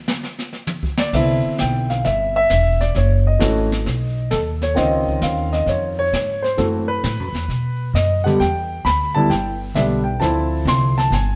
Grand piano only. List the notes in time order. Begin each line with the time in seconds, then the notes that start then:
0.99 D5
1.14 D3 B3 C4 E4 E5
1.60 G5
1.90 F5
2.05 E5
2.36 E5
2.81 D5
2.97 C#5
3.27 D#5
3.39 E3 A3 C#4 F#4
4.31 A4
4.63 C#5
4.74 D#3 C4 C#4 F4 D#5
5.23 F5
5.53 D#5
5.69 C#5
5.99 C#5
6.42 C5
6.57 E3 A3 C4 F#4 A4
6.88 B4
7.95 D#5
8.24 D3 G3 B3 G4 F#5
8.40 G5
8.85 B5
9.15 D3 G3 B3 E4 A5
9.30 G5
9.75 D3 G3 B3 D4 E5
10.04 G5
10.20 D3 F3 C4 E4 A5
10.68 C6
10.98 A5
11.14 G#5